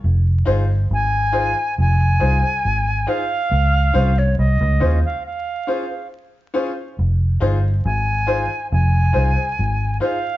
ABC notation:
X:1
M:4/4
L:1/16
Q:1/4=69
K:Fm
V:1 name="Flute"
z4 a4 a6 f2- | f3 d e3 f f4 z4 | z4 a4 a6 f2 |]
V:2 name="Grand piano"
z2 [EFAc] z3 [EFAc] z3 [EFAc] [Ac] z2 [EFAc] z | z2 [DFAc] z3 [DFAc] z3 [DFAc] [Ac] z2 [DFAc] z | z2 [EFAc] z3 [EFAc] z3 [EFAc] [Ac] z2 [EFAc] z |]
V:3 name="Fingered electric bass" clef=bass
F,,,2 G,,,2 A,,,3 z F,,,2 C,, z A,,,2 z2 | D,,2 C,,2 C,, D,, E,, z8 z | F,,,2 G,,,2 A,,,3 z F,,,2 C,, z A,,,2 z2 |]